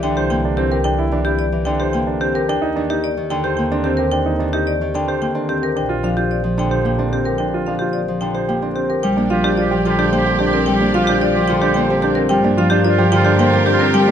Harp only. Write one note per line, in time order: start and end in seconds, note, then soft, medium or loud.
0.00 1.65 D3 medium
0.00 1.10 E3 medium
0.00 0.29 A#3 medium
0.30 1.93 A#3 medium
1.12 1.51 E3 medium
1.52 2.51 E3 medium
1.66 2.51 D3 medium
1.94 3.57 A#3 medium
2.77 3.16 D#3 medium
3.17 4.39 D#3 medium
3.31 4.93 D3 medium
3.58 5.20 A#3 medium
3.72 5.34 C4 medium
4.40 4.80 D#3 medium
4.81 5.79 D#3 medium
4.94 5.78 D3 medium
5.21 6.83 A#3 medium
5.35 6.98 C4 medium
6.03 6.42 F3 medium
6.44 7.66 F3 medium
6.58 8.21 D3 medium
6.85 8.48 A#3 medium
6.99 8.61 C4 medium
7.68 8.07 F3 soft
8.08 9.30 F3 medium
8.22 9.06 D3 medium
8.49 9.16 A#3 medium
8.62 9.05 C4 medium
9.04 10.66 G3 medium
9.18 10.12 A#3 medium
9.31 9.71 F3 medium
9.72 10.94 F3 medium
9.86 11.48 D3 medium
10.13 10.80 A#3 medium
10.26 11.89 C4 medium
10.68 12.29 G3 medium
10.81 11.75 A#3 medium
10.95 11.35 F3 medium
11.36 12.56 F3 medium
11.49 12.33 D3 medium
11.77 12.43 A#3 medium
11.90 12.33 C4 medium
12.30 13.92 G3 medium
12.44 13.38 A#3 medium
12.58 12.97 F3 medium
12.98 14.11 F3 medium
13.12 14.11 D3 medium
13.39 14.06 A#3 medium
13.53 14.11 C4 medium
13.94 14.11 G3 loud
14.08 14.11 A#3 medium